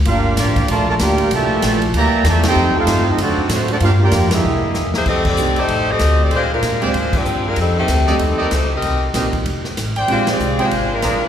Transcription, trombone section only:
X:1
M:4/4
L:1/8
Q:"Swing" 1/4=191
K:Cmix
V:1 name="Trombone section"
[B,DF]2 [F,B,D]2 A, A, [B,DG]2 | [B,,E,A,]3 z [E,G,B,]2 [B,,E,A,] [C_EG]- | [C_EG] [A,CF]2 [A,CE] [^F,A,D]2 [F,A,C] [F,A,D] | [B,DF] [B,DG]2 [_A,B,E]4 z |
[K:Bb] z8 | z8 | z8 | z8 |
z8 |]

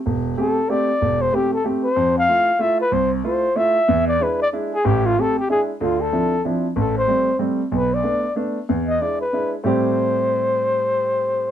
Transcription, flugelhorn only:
X:1
M:3/4
L:1/16
Q:"Swing" 1/4=188
K:Am
V:1 name="Flugelhorn"
z4 A4 d4- | d2 c2 G2 A2 z2 c2- | c2 f6 e2 B2 | c2 z2 c4 e4- |
e2 d2 B2 d2 z2 ^G2 | G2 F2 A2 G2 ^G2 z2 | F2 A6 z4 | A2 c6 z4 |
B2 d6 z4 | z2 ^d2 =d2 B4- B z | c12- | c12 |]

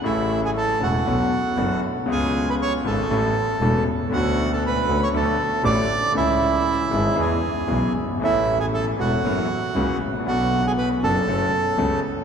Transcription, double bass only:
X:1
M:4/4
L:1/8
Q:1/4=118
K:A
V:1 name="Double bass" clef=bass
A,,,3 E,,, B,,, z F,,, z | C,,3 G,,, A,,, z E,,, z | D,,3 D,, D,, z A,,, z | C,,3 G,,, E,, z B,,, =G,,, |
A,,,3 E,,, F,,, z C,, A,,, | B,,,3 F,,, F,,, z C,, z |]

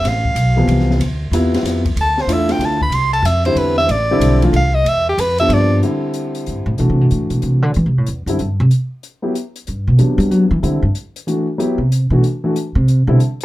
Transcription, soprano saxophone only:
X:1
M:3/4
L:1/16
Q:"Swing" 1/4=187
K:Am
V:1 name="Soprano saxophone"
f12 | z12 | a2 c2 e2 g2 a2 b2 | c'2 a2 e2 c2 B2 e2 |
d6 z2 f2 _e2 | e2 G2 B2 e2 d3 z | [K:Ador] z12 | z12 |
z12 | z12 | z12 | z12 |
z12 | z12 |]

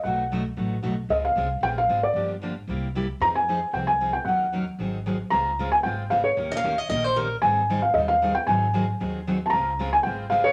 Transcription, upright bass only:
X:1
M:4/4
L:1/8
Q:"Swing" 1/4=228
K:Dblyd
V:1 name="Upright bass" clef=bass
=B,,,4 =A,,,2 B,,,2 | D,,2 C,,2 B,,,2 A,,,2 | G,,,4 C,,4 | F,,4 C,,4 |
E,,4 A,,,4 | D,,4 A,,,4 | E,,4 B,,,4 | A,,,4 E,,4 |
A,,,4 E,,4 | D,,4 A,,,4 |]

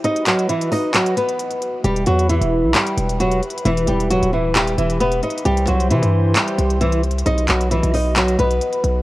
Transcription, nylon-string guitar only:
X:1
M:4/4
L:1/8
Q:1/4=133
K:Em
V:1 name="Nylon-string guitar"
[^D^d] [F,F] [E,E] [Dd] [F,F] [B,B]3 | [G,G] [F,F] [E,E]2 [G,G]2 [F,F] z | [E,E] [G,G] [F,F] [E,E] [G,G] [E,E] [B,B] [^D^d] | [G,G] [F,F] [E,E]2 [G,G]2 [E,E] z |
[^D^d] [F,F] [E,E] [Dd] [F,F] [B,B]3 |]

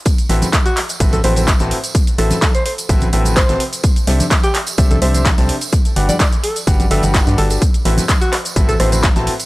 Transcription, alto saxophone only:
X:1
M:4/4
L:1/16
Q:"Swing 16ths" 1/4=127
K:Ador
V:1 name="Alto saxophone"
z4 z F z3 A c c z4 | z2 A3 c c z4 z c2 z2 | z4 z G z3 A c c z4 | z3 d d z A z3 A z3 A A |
z4 z F z3 A c c z4 |]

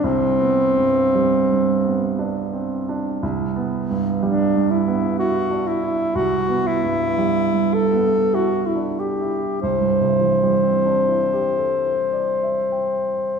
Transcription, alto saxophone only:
X:1
M:3/4
L:1/16
Q:1/4=56
K:Clyd
V:1 name="Alto saxophone"
C8 z4 | z4 D2 E2 F2 E2 | F2 E4 A2 F E G2 | c12 |]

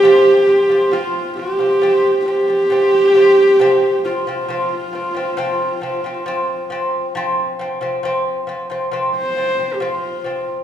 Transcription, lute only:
X:1
M:4/4
L:1/16
Q:1/4=68
K:none
V:1 name="Lute" clef=bass
[F,C]2 [F,C] [F,C] [F,C]2 [F,C] [F,C] [F,C]2 [F,C] [F,C] [F,C]2 [F,C]2 | [F,C]2 [F,C] [F,C] [F,C]2 [F,C] [F,C] [F,C]2 [F,C] [F,C] [F,C]2 [F,C]2 | [F,C]2 [F,C] [F,C] [F,C]2 [F,C] [F,C] [F,C]2 [F,C] [F,C] [F,C]2 [F,C]2 |]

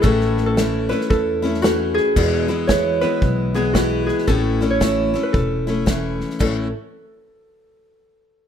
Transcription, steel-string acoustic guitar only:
X:1
M:4/4
L:1/8
Q:"Swing" 1/4=113
K:A
V:1 name="Steel-string acoustic guitar"
[A,,E,A,CE]2 [E,A,CE] [A,CE]2 [A,CE] [E,A,CE]2 | [E,,B,,E,G,B,E] [E,G,B,E] [E,G,B,E] [E,G,B,E]2 [E,G,B,E] [E,G,B,E]2 | [A,,E,A,CE] [A,CE] [E,A,CE] [A,CE]2 [A,CE] [E,A,CE]2 | [A,,E,A,CE] z6 z |]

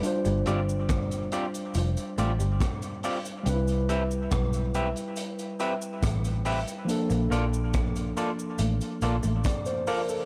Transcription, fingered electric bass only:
X:1
M:4/4
L:1/16
Q:1/4=70
K:C
V:1 name="Fingered electric bass" clef=bass
z G,,, G,,,4 z2 F,,, z A,,, G,,, z4 | C,,4 B,,,3 z4 z A,,,3 z | z _B,,, B,,,4 z2 A,,, z B,,, A,,, z4 |]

